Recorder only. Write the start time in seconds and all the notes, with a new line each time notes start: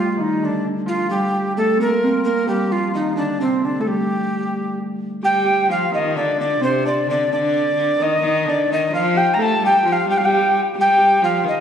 Already playing: F4
0.12 F4
0.21 D#4
0.45 D4
0.88 F4
1.10 G4
1.57 A4
1.81 A#4
2.24 A#4
2.48 G4
2.72 F4
2.94 D#4
3.17 D4
3.41 C4
3.65 D4
3.81 A4
3.87 G4
5.24 G5
5.71 F5
5.94 D#5
6.17 D5
6.41 D5
6.63 C5
6.86 D5
7.10 D5
7.33 D5
8.02 D#5
8.49 D5
8.73 D#5
8.95 F5
9.17 G5
9.34 A#5
9.42 A5
9.66 G5
9.88 G5
9.92 F5
10.10 G5
10.18 F5
10.25 G5
10.81 G5
11.24 F5
11.48 D#5